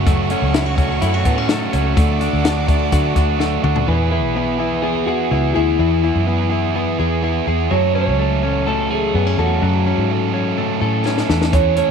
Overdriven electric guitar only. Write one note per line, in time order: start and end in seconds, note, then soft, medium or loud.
0.06 0.30 F#2 medium
0.06 0.30 C#3 medium
0.06 0.31 F#3 loud
0.06 0.31 A3 medium
0.06 0.30 C#4 loud
0.06 0.29 F#4 loud
0.30 0.54 F#3 soft
0.30 0.54 A3 medium
0.30 0.54 C#4 medium
0.30 0.54 F#4 medium
0.54 0.78 F#2 medium
0.54 0.78 C#3 medium
0.54 0.78 F#3 medium
0.54 0.78 A3 medium
0.54 0.78 C#4 medium
0.54 0.76 F#4 medium
0.78 1.00 F#3 medium
0.78 1.01 A3 medium
0.78 1.01 C#4 medium
0.78 1.02 F#4 medium
1.01 1.25 F#3 medium
1.01 1.26 A3 medium
1.01 1.25 C#4 medium
1.01 1.24 F#4 medium
1.25 1.49 F#3 soft
1.25 1.49 A3 medium
1.25 1.49 C#4 medium
1.25 1.49 F#4 medium
1.49 1.73 F#2 medium
1.49 1.73 C#3 loud
1.49 1.73 F#3 loud
1.49 1.73 A3 loud
1.49 1.72 C#4 loud
1.49 1.71 F#4 medium
1.72 1.96 F#3 medium
1.72 1.97 A3 medium
1.72 1.97 C#4 medium
1.72 1.97 F#4 medium
1.97 2.21 D3 medium
1.97 2.21 F#3 medium
1.97 2.21 A3 medium
1.97 2.20 D4 medium
1.97 2.19 F#4 loud
2.20 2.44 A3 medium
2.20 2.44 D4 medium
2.20 2.44 F#4 medium
2.44 2.68 D3 medium
2.44 2.69 F#3 medium
2.44 2.69 A3 medium
2.44 2.67 D4 medium
2.44 2.66 F#4 medium
2.67 2.92 A3 medium
2.67 2.93 D4 medium
2.67 2.92 F#4 medium
2.92 3.16 F#3 medium
2.92 3.17 A3 medium
2.92 3.16 D4 medium
2.92 3.14 F#4 medium
3.15 3.38 A3 soft
3.15 3.39 D4 soft
3.15 3.40 F#4 medium
3.39 3.63 D3 medium
3.39 3.64 F#3 medium
3.39 3.64 A3 medium
3.39 3.63 D4 medium
3.39 3.62 F#4 loud
3.63 3.87 A3 medium
3.63 3.88 D4 medium
3.63 3.87 F#4 medium
3.87 4.11 E3 medium
3.87 4.12 B3 medium
3.87 4.11 E4 medium
3.87 4.09 G#4 medium
4.10 4.35 B3 soft
4.10 4.36 E4 soft
4.10 4.35 G#4 soft
4.35 4.59 E3 soft
4.35 4.60 B3 medium
4.35 4.59 E4 medium
4.35 4.57 G#4 medium
4.58 4.82 B3 soft
4.58 4.82 E4 soft
4.58 4.83 G#4 soft
4.82 5.07 E3 medium
4.82 5.07 B3 medium
4.82 5.07 E4 medium
4.82 5.06 G#4 medium
5.07 5.31 B3 soft
5.07 5.32 E4 soft
5.07 5.31 G#4 soft
5.31 5.55 E3 medium
5.31 5.56 B3 medium
5.31 5.55 E4 medium
5.31 5.54 G#4 medium
5.55 5.78 B3 soft
5.55 5.79 E4 soft
5.55 5.79 G#4 soft
5.79 6.03 E3 medium
5.79 6.03 B3 medium
5.79 6.03 E4 medium
5.79 6.01 G#4 medium
6.02 6.25 B3 soft
6.02 6.27 E4 soft
6.02 6.27 G#4 medium
6.26 6.51 E3 medium
6.26 6.51 B3 medium
6.26 6.51 E4 medium
6.26 6.49 G#4 medium
6.50 6.74 B3 soft
6.50 6.75 E4 medium
6.50 6.75 G#4 medium
6.75 6.99 E3 medium
6.75 6.99 B3 loud
6.75 6.99 E4 medium
6.75 6.98 G#4 loud
6.99 7.22 B3 soft
6.99 7.23 E4 soft
6.99 7.23 G#4 medium
7.22 7.46 E3 medium
7.22 7.47 B3 medium
7.22 7.47 E4 medium
7.22 7.46 G#4 medium
7.47 7.72 B3 soft
7.47 7.72 E4 medium
7.47 7.71 G#4 medium
7.71 7.95 F#2 medium
7.71 7.95 C#3 medium
7.71 7.95 F#3 medium
7.71 7.96 A3 medium
7.71 7.96 C#4 medium
7.71 7.94 A4 medium
7.95 8.18 F#3 soft
7.95 8.19 A3 soft
7.95 8.20 C#4 soft
7.95 8.19 A4 medium
8.19 8.43 F#3 medium
8.19 8.43 A3 medium
8.19 8.43 C#4 medium
8.19 8.42 A4 medium
8.43 8.67 F#3 soft
8.43 8.67 A3 soft
8.43 8.67 C#4 medium
8.43 8.67 A4 medium
8.67 8.91 F#2 medium
8.67 8.91 C#3 medium
8.67 8.91 F#3 medium
8.67 8.91 A3 medium
8.67 8.91 C#4 medium
8.67 8.90 A4 medium
8.91 9.14 F#3 soft
8.91 9.15 A3 soft
8.91 9.15 C#4 soft
8.91 9.15 A4 soft
9.15 9.38 F#3 medium
9.15 9.39 A3 medium
9.15 9.38 C#4 medium
9.15 9.37 A4 medium
9.38 9.63 F#3 soft
9.38 9.63 A3 soft
9.38 9.63 C#4 soft
9.38 9.62 A4 soft
9.63 9.86 F#2 medium
9.63 9.87 C#3 medium
9.63 9.87 F#3 medium
9.63 9.87 A3 medium
9.63 9.86 C#4 medium
9.63 9.85 A4 medium
9.86 10.09 F#3 soft
9.86 10.10 A3 soft
9.86 10.11 C#4 soft
9.86 10.10 A4 soft
10.10 10.34 F#3 medium
10.10 10.35 A3 medium
10.10 10.33 C#4 medium
10.10 10.32 A4 medium
10.34 10.57 F#3 medium
10.34 10.57 A3 medium
10.34 10.57 C#4 soft
10.34 10.58 A4 medium
10.57 10.81 F#2 medium
10.57 10.82 C#3 loud
10.57 10.82 F#3 medium
10.57 10.82 A3 medium
10.57 10.81 C#4 medium
10.57 10.80 A4 loud
10.81 11.03 F#3 soft
10.81 11.04 A3 medium
10.81 11.05 C#4 medium
10.81 11.05 A4 medium
11.05 11.29 F#3 medium
11.05 11.29 A3 medium
11.05 11.30 C#4 medium
11.05 11.28 A4 medium
11.29 11.53 A3 soft
11.29 11.53 C#4 medium
11.29 11.53 A4 medium
11.53 11.77 E3 medium
11.53 11.78 A3 medium
11.53 11.77 C#4 medium
11.53 11.75 A4 medium
11.76 11.91 A3 soft
11.76 11.91 C#4 medium
11.76 11.91 A4 medium